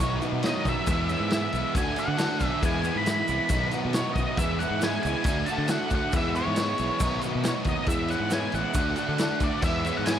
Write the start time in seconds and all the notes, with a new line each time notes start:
Already playing: C#5
0.00 B1 B2 D#3 F#3 B3 D#4 F#4 B4 D#5, kick, shaker
0.21 F#3 B3 D#4 F#4 B4 F#5, crash, shaker
0.32 B2
0.43 B2 D#3 F#3 B3 D#4 F#4 B4 C#5 D#5, snare, crash, shaker
0.65 B1 F#3 B3 D#4 F#4 B4 D#5, kick, crash, shaker
0.69 E5
0.85 E2 E3 G#3 B3 E4 G#4 B4 E5, kick, crash, shaker
0.90 E4
1.09 B3 E4 G#4 B4 C#5, crash, shaker
1.13 G#3 E5
1.20 G#2
1.29 E3 G#3 E4 G#4 B4 E5, snare, crash, shaker
1.34 B3 E4
1.53 B1 G#3 B3 E4 B4 E5, crash, shaker
1.74 D2 D3 A3 D4 F#4 A4 D5 F#5 G#5, kick, crash, shaker
1.94 F#4 A4 D5 G#5, crash, shaker
1.98 A3 D4 F#5
2.08 D3
2.17 D3 A3 D4 F#4 A4 D5 A5, snare, crash, shaker
2.40 B1 A3 D4 F#4 D5 G#5, kick, crash, shaker
2.46 E5
2.62 E2 E3 G#3 B3 E4 G#4 B4 E5 G#5, kick, crash, shaker
2.83 G#3 B3 E4 G#4 B4 E5, crash, shaker
2.95 G#2 B5
3.06 E3 G#3 B3 E4 G#4 B4 E5, snare, crash, shaker
3.10 B5
3.28 C2 G#3 B3 E4 G#4 B4 E5, crash, shaker
3.48 B1 B2 D#3 F#3 B3 D#4 F#4 B4 D#5, kick, crash, shaker
3.52 D#4
3.70 F#3 B3 D#4 F#4 B4 F#5, crash, shaker
3.85 B2
3.93 B2 D#3 F#3 B3 D#4 F#4 B4 C#5 F#5, snare, crash, shaker
4.14 B1 B3 D#4 D#5, kick, crash, shaker
4.18 F#3 D#4 F#4 B4 F#5
4.37 E2 E3 G#3 B3 E4 G#4 B4 E5, kick, crash, shaker
4.59 B3 E4 F#5, crash, shaker
4.63 G#3 G#4 B4 E5
4.70 G#2
4.81 E3 G#3 B3 E4 G#4 B4 E5 G#5, snare, crash, shaker
5.03 C#2 B3 E4 G#4 B4 D#5 G#5, crash, shaker
5.07 G#3 E4
5.24 D2 D3 A3 D4 F#4 A4 D5 F#5, kick, crash, shaker
5.28 F#4
5.46 D4 F#4 A4 D5 F#5 A5, crash, shaker
5.51 A3
5.58 D3
5.68 D3 A3 D4 F#4 A4 D5 E5 F#5, snare, crash, shaker
5.72 F#4
5.90 D2 D4 F#4 A4 D5 F#5, kick, crash, shaker
5.95 A3 F#5
6.13 E2 E3 G#3 B3 E4 G#4 B4 E5, kick, crash, shaker
6.34 G#3 B3 E4 G#4 B4 C#5 F#5, crash, shaker
6.47 G#2
6.56 E3 G#3 B3 E4 G#4 B4 C#5, snare, crash, shaker
6.78 B1 B3 E4 G#4 B4 C#5, crash, shaker
6.82 G#3
7.00 B1 B2 D#3 F#3 B3 D#4 F#4 B4 D#5, kick, crash, shaker
7.21 F#3 B3 D#4 B4 D#5, crash, shaker
7.26 F#4
7.35 B2
7.43 B2 D#3 F#3 B3 D#4 F#4 B4 D#5, snare, crash, shaker
7.48 C#5
7.64 D#2 F#3 B3 D#4 F#4 B4 C#5, kick, crash, shaker
7.69 D#5
7.86 E2 E3 G#3 B3 E4 G#4 B4 E5, kick, crash, shaker
8.08 G#3 B3 E4 G#4 B4 C#5 F#5, crash, shaker
8.20 G#2
8.30 E3 G#3 B3 E4 G#4 B4 C#5 G#5, snare, crash, shaker
8.52 A1 B3 E4 G#4 B4 F#5, crash, shaker
8.56 G#3
8.74 D2 D3 A3 D4 F#4 A4 D5, kick, crash, shaker
8.96 A3 D4 F#4 A4 D5, crash, shaker
9.09 D3
9.18 D3 A3 D4 F#4 A4 D5, snare, crash, shaker
9.40 D2 A3 D4 F#4 D5 E5, kick, crash, shaker
9.62 E2 E3 G#3 B3 E4 G#4 B4 E5, kick, crash, shaker
9.66 E4
9.84 G#3 B3 E4 G#4 B4 C#5, crash, shaker
9.97 G#2 F#5
10.06 E3 G#3 B3 E4 G#4 B4 C#5 G#5, snare, crash, shaker